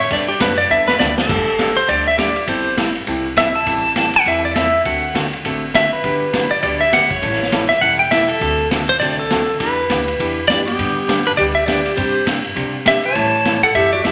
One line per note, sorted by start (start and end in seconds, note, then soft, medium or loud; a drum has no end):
0.00 0.10 A2 loud
0.00 0.11 C#5 medium
0.10 0.40 G2 medium
0.10 0.30 G3 medium
0.10 0.30 B3 medium
0.10 0.31 D4 medium
0.10 0.31 A4 medium
0.10 0.30 D5 medium
0.10 kick soft
0.10 ride medium
0.29 0.40 G4 medium
0.40 0.69 F#2 loud
0.40 0.51 G3 medium
0.40 0.51 B3 medium
0.40 0.52 D4 medium
0.40 0.52 A4 medium
0.40 0.59 B4 medium
0.40 kick soft
0.40 snare medium
0.40 hi-hat pedal medium
0.40 ride medium
0.58 0.70 D5 loud
0.70 0.99 E2 medium
0.70 0.90 G3 medium
0.70 0.90 B3 medium
0.70 0.90 D4 medium
0.70 0.90 A4 medium
0.70 0.88 E5 loud
0.88 0.95 B4 loud
0.88 snare medium
0.99 1.29 D2 loud
0.99 1.11 G3 medium
0.99 1.11 B3 medium
0.99 1.11 D4 medium
0.99 1.11 A4 medium
0.99 1.18 D5 loud
0.99 snare medium
0.99 hi-hat pedal medium
1.18 1.79 A4 medium
1.18 snare medium
1.29 1.77 G1 medium
1.29 1.49 G3 medium
1.29 1.50 A3 medium
1.29 1.50 D4 medium
1.29 1.50 G4 medium
1.29 kick medium
1.29 crash medium
1.59 1.70 G3 medium
1.59 1.70 A3 medium
1.59 1.70 D4 medium
1.59 1.70 G4 medium
1.59 kick soft
1.59 snare medium
1.59 hi-hat pedal medium
1.59 ride medium
1.77 1.89 C5 medium
1.77 ride soft
1.88 2.36 D2 medium
1.88 2.08 G3 medium
1.88 2.09 A3 medium
1.88 2.09 D4 medium
1.88 2.09 G4 medium
1.88 2.07 D5 loud
1.88 kick soft
1.88 ride medium
2.08 2.18 E5 medium
2.18 2.29 G3 medium
2.18 2.29 A3 medium
2.18 2.29 D4 medium
2.18 2.29 G4 medium
2.18 2.48 D5 loud
2.18 kick soft
2.18 snare medium
2.18 hi-hat pedal medium
2.18 ride medium
2.36 ride soft
2.47 2.95 G1 medium
2.47 2.67 G3 medium
2.47 2.68 C4 medium
2.47 2.68 E4 medium
2.47 2.68 A4 medium
2.47 2.76 C5 medium
2.47 kick soft
2.47 ride medium
2.77 2.88 G3 medium
2.77 2.88 C4 medium
2.77 2.89 E4 medium
2.77 2.89 A4 medium
2.77 kick soft
2.77 snare medium
2.77 hi-hat pedal medium
2.77 ride medium
2.95 ride soft
3.07 3.55 C2 medium
3.07 3.27 G3 medium
3.07 3.27 C4 medium
3.07 3.27 E4 medium
3.07 3.27 A4 medium
3.07 kick soft
3.07 ride medium
3.37 3.48 G3 medium
3.37 3.48 C4 medium
3.37 3.48 E4 medium
3.37 3.49 A4 medium
3.37 3.54 E5 loud
3.37 kick soft
3.37 snare medium
3.37 hi-hat pedal medium
3.37 ride medium
3.56 4.16 A5 loud
3.66 4.14 A1 medium
3.66 3.86 E3 medium
3.66 3.86 G3 medium
3.66 3.87 C4 medium
3.66 3.87 E4 medium
3.66 3.87 A4 medium
3.66 kick soft
3.66 ride medium
3.96 4.07 E3 medium
3.96 4.07 G3 medium
3.96 4.07 C4 medium
3.96 4.07 E4 medium
3.96 4.08 A4 medium
3.96 kick soft
3.96 snare medium
3.96 hi-hat pedal medium
3.96 ride medium
4.13 4.27 F#5 loud
4.13 ride soft
4.26 4.73 E2 medium
4.26 4.46 E3 medium
4.26 4.46 G3 medium
4.26 4.46 C4 medium
4.26 4.46 E4 medium
4.26 4.46 A4 medium
4.26 4.45 E5 medium
4.26 kick soft
4.26 ride medium
4.45 4.56 D5 medium
4.55 4.66 E3 medium
4.55 4.66 G3 medium
4.55 4.67 C4 medium
4.55 4.67 E4 medium
4.55 4.67 A4 medium
4.55 4.86 E5 loud
4.55 kick soft
4.55 snare medium
4.55 hi-hat pedal medium
4.55 ride medium
4.85 5.33 D2 medium
4.85 5.05 D3 soft
4.85 5.05 A3 medium
4.85 5.05 C4 medium
4.85 5.05 F#4 medium
4.85 5.05 A4 soft
4.85 5.13 F#5 medium
4.85 kick soft
4.85 ride medium
5.14 5.25 D3 medium
5.14 5.26 A3 medium
5.14 5.26 C4 medium
5.14 5.26 F#4 medium
5.14 5.26 A4 medium
5.14 kick soft
5.14 snare medium
5.14 hi-hat pedal medium
5.14 ride medium
5.33 ride soft
5.44 5.92 A1 medium
5.44 5.64 D3 medium
5.44 5.64 A3 medium
5.44 5.65 C4 medium
5.44 5.65 F#4 medium
5.44 5.65 A4 medium
5.44 kick soft
5.44 ride medium
5.74 5.85 D3 medium
5.74 5.85 A3 medium
5.74 5.85 C4 medium
5.74 5.86 F#4 medium
5.74 5.86 A4 medium
5.74 5.93 E5 medium
5.74 kick soft
5.74 snare medium
5.74 hi-hat pedal medium
5.74 ride medium
5.93 6.54 B4 medium
6.04 6.51 G1 medium
6.04 6.24 D3 medium
6.04 6.24 F#3 soft
6.04 6.24 B3 soft
6.04 6.24 D4 medium
6.04 6.24 G4 medium
6.04 kick soft
6.04 ride medium
6.33 6.44 D3 medium
6.33 6.44 F#3 medium
6.33 6.45 B3 medium
6.33 6.45 D4 medium
6.33 6.45 G4 medium
6.33 kick soft
6.33 snare medium
6.33 hi-hat pedal medium
6.33 ride medium
6.51 6.62 D5 medium
6.63 7.11 D2 medium
6.63 6.83 D3 medium
6.63 6.83 F#3 medium
6.63 6.83 B3 medium
6.63 6.83 D4 medium
6.63 6.83 G4 medium
6.63 6.80 D5 medium
6.63 kick soft
6.63 ride medium
6.81 6.93 E5 medium
6.92 7.04 D3 medium
6.92 7.04 F#3 medium
6.92 7.04 B3 medium
6.92 7.04 D4 medium
6.92 7.04 G4 medium
6.92 7.12 F#5 loud
6.92 kick soft
6.92 snare medium
6.92 hi-hat pedal medium
6.92 ride medium
7.10 7.66 C#5 medium
7.10 kick medium
7.10 ride soft
7.22 7.70 A1 medium
7.22 7.42 E3 soft
7.22 7.42 G3 medium
7.22 7.42 C#4 soft
7.22 7.43 E4 medium
7.22 7.43 A4 medium
7.22 kick soft
7.22 ride medium
7.33 snare soft
7.43 snare soft
7.52 7.63 E3 medium
7.52 7.63 G3 medium
7.52 7.63 C#4 medium
7.52 7.64 E4 medium
7.52 7.64 A4 medium
7.52 kick soft
7.52 snare medium
7.52 hi-hat pedal medium
7.52 ride medium
7.69 7.81 E5 medium
7.69 snare soft
7.81 8.30 E1 medium
7.81 8.02 E3 medium
7.81 8.02 G3 medium
7.81 8.02 C#4 medium
7.81 8.02 E4 medium
7.81 8.02 A4 medium
7.81 7.99 F#5 medium
7.81 kick soft
7.81 ride medium
7.99 8.12 G5 medium
8.11 8.22 E3 medium
8.11 8.23 G3 medium
8.11 8.23 C#4 medium
8.11 8.23 E4 medium
8.11 8.23 A4 medium
8.11 8.30 E5 loud
8.11 kick soft
8.11 snare medium
8.11 hi-hat pedal medium
8.11 ride medium
8.28 8.68 A4 loud
8.28 ride medium
8.41 8.89 D2 medium
8.41 8.61 D3 medium
8.41 8.61 A3 medium
8.41 8.61 C4 soft
8.41 8.61 F#4 medium
8.41 8.61 A4 medium
8.41 kick soft
8.41 ride medium
8.71 8.82 D3 medium
8.71 8.82 A3 medium
8.71 8.82 C4 medium
8.71 8.83 F#4 medium
8.71 8.83 A4 medium
8.71 kick soft
8.71 snare medium
8.71 hi-hat pedal medium
8.71 ride medium
8.89 8.99 C5 medium
8.89 ride soft
9.00 9.26 C2 medium
9.00 9.21 D3 medium
9.00 9.21 A3 medium
9.00 9.21 C4 medium
9.00 9.21 F#4 medium
9.00 9.21 A4 medium
9.00 9.17 D5 medium
9.00 kick soft
9.00 ride medium
9.19 9.58 A4 medium
9.30 9.56 D2 medium
9.30 9.41 D3 medium
9.30 9.41 A3 medium
9.30 9.42 C4 medium
9.30 9.42 F#4 medium
9.30 9.42 A4 medium
9.30 kick soft
9.30 snare medium
9.30 hi-hat pedal medium
9.30 ride medium
9.60 9.84 E2 medium
9.60 9.80 E3 medium
9.60 9.80 B3 soft
9.60 9.80 D4 medium
9.60 9.80 G4 medium
9.60 10.47 B4 medium
9.60 kick soft
9.60 ride medium
9.90 10.15 D2 medium
9.90 10.01 E3 medium
9.90 10.01 B3 medium
9.90 10.01 D4 medium
9.90 10.01 G4 medium
9.90 kick soft
9.90 snare medium
9.90 hi-hat pedal medium
9.90 ride medium
10.08 ride soft
10.20 10.45 E2 medium
10.20 10.39 E3 medium
10.20 10.40 B3 medium
10.20 10.40 D4 medium
10.20 10.40 G4 medium
10.20 kick soft
10.20 ride medium
10.48 10.74 F#2 medium
10.48 10.60 E3 medium
10.48 10.61 B3 medium
10.48 10.61 D4 medium
10.48 10.65 G4 medium
10.48 10.61 G4 medium
10.48 10.67 D5 loud
10.48 kick soft
10.48 snare medium
10.48 hi-hat pedal medium
10.48 ride medium
10.66 11.22 B3 medium
10.66 11.28 G4 medium
10.66 ride soft
10.79 11.26 G2 medium
10.79 10.98 D3 soft
10.79 10.99 G3 medium
10.79 10.99 B3 medium
10.79 10.99 D4 medium
10.79 10.99 G4 soft
10.79 kick soft
10.79 ride medium
11.08 11.19 D3 medium
11.08 11.19 G3 medium
11.08 11.20 B3 medium
11.08 11.20 D4 medium
11.08 11.20 G4 medium
11.08 kick soft
11.08 snare medium
11.08 hi-hat pedal medium
11.08 ride medium
11.27 11.32 D4 medium
11.27 11.32 B4 medium
11.27 ride soft
11.37 11.86 D2 medium
11.37 11.58 D3 medium
11.37 11.58 G3 medium
11.37 11.58 B3 medium
11.37 11.58 D4 medium
11.37 11.46 G4 medium
11.37 11.59 G4 medium
11.37 11.42 D5 medium
11.37 kick soft
11.37 ride medium
11.55 11.66 G4 medium
11.55 11.66 E5 medium
11.66 11.78 D3 medium
11.66 11.79 G3 medium
11.66 11.79 B3 medium
11.66 11.79 D4 medium
11.66 11.95 G4 medium
11.66 11.79 G4 medium
11.66 11.98 D5 medium
11.66 kick soft
11.66 snare medium
11.66 hi-hat pedal soft
11.66 ride medium
11.86 ride soft
11.97 12.45 G2 medium
11.97 12.17 C3 soft
11.97 12.17 G3 medium
11.97 12.17 C4 medium
11.97 12.17 D4 medium
11.97 12.25 G4 medium
11.97 12.17 G4 medium
11.97 12.25 C5 medium
11.97 kick soft
11.97 ride medium
12.26 12.38 C3 medium
12.26 12.38 G3 medium
12.26 12.38 C4 medium
12.26 12.38 D4 medium
12.26 12.38 G4 medium
12.26 kick soft
12.26 snare medium
12.26 hi-hat pedal medium
12.26 ride medium
12.44 ride soft
12.55 12.76 C3 medium
12.55 13.04 C3 medium
12.55 12.76 G3 medium
12.55 12.76 C4 medium
12.55 12.76 D4 medium
12.55 12.76 G4 medium
12.55 kick soft
12.55 ride medium
12.85 12.97 C3 medium
12.85 12.97 G3 medium
12.85 12.97 C4 medium
12.85 12.97 D4 medium
12.85 12.97 G4 medium
12.85 13.04 G4 medium
12.85 13.05 E5 loud
12.85 kick soft
12.85 snare medium
12.85 hi-hat pedal medium
12.85 ride medium
13.03 13.60 C#5 medium
13.03 13.63 A5 loud
13.03 ride medium
13.15 13.63 A2 medium
13.15 13.35 E3 medium
13.15 13.35 G3 medium
13.15 13.35 C#4 medium
13.15 13.35 E4 medium
13.15 13.36 A4 medium
13.15 kick soft
13.15 ride medium
13.45 13.56 E3 medium
13.45 13.56 G3 medium
13.45 13.57 C#4 medium
13.45 13.57 E4 medium
13.45 13.57 A4 medium
13.45 kick soft
13.45 snare medium
13.45 hi-hat pedal medium
13.45 ride medium
13.63 13.77 A4 medium
13.63 13.68 F#5 medium
13.63 ride soft
13.75 14.00 F#2 medium
13.75 13.95 E3 medium
13.75 13.95 G3 medium
13.75 13.95 C#4 medium
13.75 13.95 E4 medium
13.75 13.95 G4 medium
13.75 13.95 A4 medium
13.75 13.92 E5 medium
13.75 kick soft
13.75 ride medium
13.93 14.08 F#4 medium
13.93 14.03 D5 medium
14.04 14.12 E2 medium
14.04 14.12 E3 medium
14.04 14.12 G3 medium
14.04 14.12 C#4 medium
14.04 14.12 E4 medium
14.04 14.12 G4 medium
14.04 14.12 A4 medium
14.04 14.12 E5 loud
14.04 kick soft
14.04 snare medium
14.04 hi-hat pedal medium
14.04 ride medium